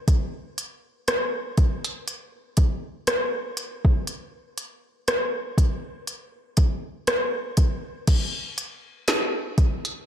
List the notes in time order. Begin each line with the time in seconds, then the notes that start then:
0.08 kick, closed hi-hat
0.58 closed hi-hat
1.08 cross-stick, closed hi-hat
1.57 kick, closed hi-hat
1.84 closed hi-hat
2.08 closed hi-hat
2.57 kick, closed hi-hat
3.07 cross-stick, closed hi-hat
3.57 closed hi-hat
3.85 kick
4.07 closed hi-hat
4.58 closed hi-hat
5.08 cross-stick, closed hi-hat
5.58 kick, closed hi-hat
6.07 closed hi-hat
6.57 kick, closed hi-hat
7.07 cross-stick, closed hi-hat
7.57 kick, closed hi-hat
8.07 kick, closed hi-hat, crash
8.58 closed hi-hat
9.08 snare, closed hi-hat
9.58 kick, closed hi-hat
9.85 closed hi-hat